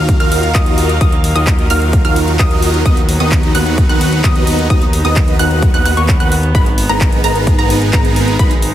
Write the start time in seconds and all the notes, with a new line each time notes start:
Already playing: D#2 D#3 F#3 A#3 D#4 F4 F#4 A#4 F5 F6, impact
0.09 kick, closed hi-hat
0.20 D#2 D#4 F4 F#4 A#4 F5 F6, closed hi-hat
0.32 open hi-hat
0.43 closed hi-hat
0.55 D#2 D#4 F4 F#4 A#4 D#5 D#6, kick, clap, closed hi-hat
0.66 closed hi-hat
0.78 open hi-hat
0.89 closed hi-hat
1.01 D#2 D#4 D#6, kick, closed hi-hat
1.12 closed hi-hat
1.24 open hi-hat
1.36 D#2 D#4 F4 F#4 A#4 D#5 D#6, closed hi-hat
1.47 kick, clap, closed hi-hat
1.59 closed hi-hat
1.70 D#2 D#4 F4 F#4 A#4 F5 F6, open hi-hat
1.82 closed hi-hat
1.93 kick, closed hi-hat
2.05 D#2 D#4 F4 F#4 A#4 F5 F6, closed hi-hat
2.16 open hi-hat
2.28 closed hi-hat
2.39 D#2 D#4 F4 F#4 A#4 D#6, kick, clap, closed hi-hat
2.51 closed hi-hat
2.62 open hi-hat
2.74 closed hi-hat
2.86 D#2 B3 D#4 B4 D#5 D#6, kick, closed hi-hat
2.97 closed hi-hat
3.09 open hi-hat
3.20 D#2 B3 D#4 F#4 B4 D#5 D#6, closed hi-hat
3.32 kick, clap, closed hi-hat
3.43 closed hi-hat
3.55 D#2 B3 D#4 F#4 B4 F#5 F#6, open hi-hat
3.66 closed hi-hat
3.78 kick, closed hi-hat
3.89 D#2 B3 D#4 F#4 B4 F#5 F#6, closed hi-hat
4.01 open hi-hat
4.13 closed hi-hat
4.24 D#2 D#6, kick, clap, closed hi-hat
4.36 closed hi-hat
4.47 open hi-hat
4.59 closed hi-hat
4.70 D#2 B3 B4 D#6, kick, closed hi-hat
4.82 closed hi-hat
4.93 open hi-hat
5.05 D#2 B3 D#4 F#4 B4 D#5 D#6, closed hi-hat
5.16 kick, clap, closed hi-hat
5.28 closed hi-hat
5.39 D#2 B3 D#4 F#4 B4 F#5 F#6, open hi-hat
5.51 closed hi-hat
5.62 kick, closed hi-hat
5.74 D#2 B3 D#4 F#4 B4 F#5 F#6, closed hi-hat
5.86 D#2 B3 D#4 F#4 B4 F#5 F#6, open hi-hat
5.97 D#2 B3 D#4 F#4 B4 C#5 C#6, closed hi-hat
6.09 kick, clap, closed hi-hat
6.20 D#2 B3 D#4 F#4 B4 F#5 F#6, closed hi-hat
6.32 open hi-hat
6.43 closed hi-hat
6.55 G#1 G#3 B3 D#4 G#4 A#4 B4 B5, kick, closed hi-hat
6.66 closed hi-hat
6.78 open hi-hat
6.89 G#1 B3 D#4 G#4 A#4 B4 A#5, closed hi-hat
7.01 kick, clap, closed hi-hat
7.12 closed hi-hat
7.24 G#1 B3 D#4 G#4 A#4 B4 A#5, open hi-hat
7.35 closed hi-hat
7.47 kick, closed hi-hat
7.59 G#1 B3 D#4 G#4 A#4 B4 A#5, closed hi-hat
7.70 open hi-hat
7.82 closed hi-hat
7.93 G#1 B3 D#4 G#4 A#4 B4 A#5, kick, clap, closed hi-hat
8.05 closed hi-hat
8.16 open hi-hat
8.28 closed hi-hat
8.39 G#1 B3 B5, kick, closed hi-hat
8.51 closed hi-hat
8.62 open hi-hat